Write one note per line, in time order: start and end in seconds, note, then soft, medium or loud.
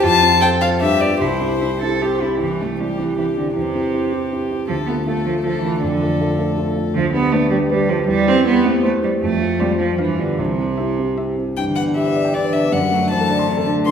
0.03 0.22 F2 medium
0.03 0.40 F4 medium
0.03 0.41 A5 loud
0.22 0.40 C4 soft
0.22 0.40 F4 soft
0.22 0.40 C5 soft
0.41 0.59 C4 medium
0.41 0.59 F4 medium
0.41 0.82 A4 medium
0.41 0.59 C5 medium
0.41 0.49 G5 medium
0.61 0.79 C4 soft
0.61 0.79 F4 medium
0.61 0.80 C5 medium
0.61 0.69 F5 medium
0.80 1.00 G2 medium
0.80 1.22 G4 medium
0.80 1.02 E5 medium
1.01 1.19 B3 soft
1.01 1.19 F4 soft
1.01 1.19 G4 soft
1.01 1.20 D5 medium
1.20 1.41 C2 medium
1.20 1.57 E4 medium
1.20 2.20 C5 medium
1.41 1.59 C4 soft
1.41 1.60 E4 soft
1.41 1.60 G4 soft
1.61 1.80 C4 medium
1.61 1.69 E4 medium
1.61 1.80 E4 soft
1.61 1.80 G4 soft
1.81 2.00 C4 soft
1.81 2.00 E4 soft
1.81 2.00 G4 medium
1.81 2.03 A4 medium
2.02 2.20 C4 soft
2.02 2.20 E4 soft
2.02 2.23 G4 medium
2.02 2.20 G4 soft
2.21 2.40 C4 soft
2.21 2.41 E4 medium
2.21 2.40 E4 soft
2.21 2.40 G4 soft
2.42 2.61 C2 soft
2.42 2.63 E3 medium
2.42 2.77 G4 soft
2.61 2.81 A3 medium
2.61 2.78 C4 soft
2.61 2.79 E4 soft
2.61 2.79 G4 soft
2.80 2.99 G3 medium
2.80 2.97 C4 soft
2.80 2.97 E4 soft
2.80 3.17 G4 soft
2.80 2.98 G4 soft
2.98 3.16 E3 medium
2.98 3.16 C4 soft
2.98 3.16 E4 soft
2.98 3.16 G4 soft
3.16 3.24 E3 medium
3.16 3.35 C4 soft
3.16 3.35 E4 soft
3.16 3.55 G4 soft
3.16 3.36 G4 soft
3.36 3.54 D3 medium
3.36 3.54 C4 soft
3.36 3.54 E4 soft
3.55 3.74 E2 soft
3.55 4.48 C3 medium
3.55 4.67 G4 soft
3.75 3.92 C4 soft
3.75 3.92 E4 soft
3.75 3.92 G4 soft
3.93 4.10 C4 soft
3.93 4.10 E4 soft
3.93 4.11 G4 soft
4.13 4.29 C4 soft
4.13 4.30 E4 soft
4.32 4.48 C4 soft
4.32 4.49 E4 soft
4.32 4.49 G4 soft
4.51 4.67 C4 soft
4.51 4.68 E4 soft
4.51 4.68 G4 soft
4.68 4.88 D2 soft
4.68 4.75 F3 medium
4.68 5.06 A4 soft
4.86 5.05 A3 soft
4.86 4.94 B3 medium
4.86 5.06 F4 soft
4.86 5.06 A4 soft
5.06 5.25 A3 medium
5.06 5.24 A3 soft
5.06 5.24 F4 soft
5.06 5.43 A4 soft
5.06 5.24 A4 soft
5.26 5.33 F3 medium
5.26 5.43 A3 soft
5.26 5.43 F4 soft
5.26 5.43 A4 soft
5.44 5.62 F3 medium
5.44 5.62 A3 soft
5.44 5.62 F4 soft
5.44 5.81 A4 soft
5.44 5.62 A4 soft
5.62 5.81 E3 medium
5.62 5.81 A3 soft
5.62 5.81 F4 soft
5.62 5.81 A4 soft
5.82 6.00 F2 medium
5.82 6.73 D3 medium
5.82 6.92 A4 soft
6.02 6.18 A3 soft
6.02 6.18 F4 soft
6.02 6.18 A4 soft
6.20 6.36 A3 soft
6.20 6.37 F4 soft
6.20 6.37 A4 soft
6.38 6.55 A3 soft
6.38 6.55 F4 soft
6.38 6.55 A4 soft
6.57 6.74 A3 soft
6.57 6.74 F4 soft
6.57 6.74 A4 soft
6.76 6.93 A3 soft
6.76 6.93 F4 soft
6.76 6.93 A4 soft
6.94 7.13 D2 medium
6.94 7.12 F3 medium
7.13 7.33 B3 medium
7.13 7.31 D4 soft
7.13 7.31 G4 soft
7.13 7.31 B4 soft
7.32 7.49 A3 medium
7.32 7.50 D4 soft
7.32 7.50 G4 soft
7.32 7.61 B4 medium
7.32 7.50 B4 soft
7.50 7.58 G3 medium
7.50 7.68 D4 soft
7.50 7.68 G4 soft
7.50 7.69 B4 soft
7.70 7.91 G3 medium
7.70 7.87 D4 soft
7.70 7.88 G4 soft
7.70 7.98 B4 medium
7.70 7.88 B4 soft
7.89 8.07 F3 medium
7.89 8.06 D4 soft
7.89 8.06 G4 soft
7.89 8.07 B4 soft
8.08 8.26 E2 medium
8.08 8.29 G3 loud
8.26 8.44 C4 soft
8.26 8.46 C4 medium
8.26 8.44 G4 soft
8.45 8.67 B3 medium
8.45 8.63 C4 soft
8.45 8.63 G4 medium
8.45 8.74 C5 medium
8.45 8.63 C5 soft
8.65 8.83 A3 medium
8.65 8.82 C4 soft
8.65 8.82 G4 soft
8.65 8.82 C5 soft
8.83 8.91 A3 medium
8.83 9.01 C4 soft
8.83 9.01 G4 soft
8.83 9.12 C5 medium
8.83 9.01 C5 medium
9.03 9.11 G3 medium
9.03 9.20 C4 soft
9.03 9.20 G4 soft
9.03 9.21 C5 soft
9.21 9.41 F2 medium
9.21 9.61 A3 medium
9.40 9.58 C4 soft
9.40 9.58 F4 soft
9.40 9.58 C5 soft
9.59 9.78 G3 medium
9.59 9.78 C4 soft
9.59 9.78 F4 soft
9.59 9.89 C5 medium
9.59 9.78 C5 soft
9.79 9.98 F3 medium
9.79 9.97 C4 soft
9.79 9.97 F4 soft
9.79 9.98 C5 soft
9.98 10.18 G2 medium
9.98 10.21 E3 medium
9.98 10.28 F5 medium
10.18 10.41 D3 medium
10.18 10.37 B3 soft
10.18 10.37 F4 soft
10.18 10.37 G4 soft
10.38 10.58 C2 soft
10.38 11.38 C3 medium
10.59 10.77 C4 soft
10.59 10.77 E4 soft
10.59 10.77 G4 soft
10.77 10.97 C4 soft
10.77 10.97 E4 soft
10.77 10.97 G4 soft
10.77 11.07 E5 soft
10.99 11.16 C4 soft
10.99 11.17 E4 soft
10.99 11.17 G4 soft
11.18 11.36 C4 soft
11.18 11.36 E4 soft
11.18 11.36 G4 soft
11.18 11.48 E5 soft
11.38 11.56 C4 soft
11.38 11.56 E4 soft
11.38 11.56 G4 soft
11.57 12.69 G2 soft
11.57 12.36 E3 medium
11.57 11.65 G5 medium
11.68 11.83 D3 soft
11.76 11.93 B3 soft
11.76 11.84 F#5 medium
11.87 12.02 D4 soft
11.96 12.12 G4 medium
11.96 12.35 E5 medium
12.06 12.21 B4 soft
12.15 12.31 D5 medium
12.25 12.40 G5 medium
12.34 12.71 D3 medium
12.34 12.55 D5 medium
12.34 12.50 D5 medium
12.45 12.60 B4 soft
12.53 12.69 D4 soft
12.53 12.74 E5 medium
12.63 12.73 B3 soft
12.71 13.83 F#2 medium
12.71 12.79 D3 medium
12.71 13.10 F#5 medium
12.82 12.97 F#3 soft
12.91 13.12 F#3 medium
12.91 13.07 A3 soft
13.01 13.16 D4 soft
13.10 13.29 E3 medium
13.10 13.26 C5 medium
13.10 13.66 A5 medium
13.20 13.35 A4 medium
13.28 13.49 D3 medium
13.28 13.45 D5 medium
13.39 13.54 C6 medium
13.47 13.67 C3 medium
13.57 13.73 A4 medium
13.66 13.88 D3 medium
13.66 13.83 D4 soft
13.76 13.86 A3 soft
13.85 13.91 G2 medium
13.85 13.91 E3 medium
13.85 13.91 C6 medium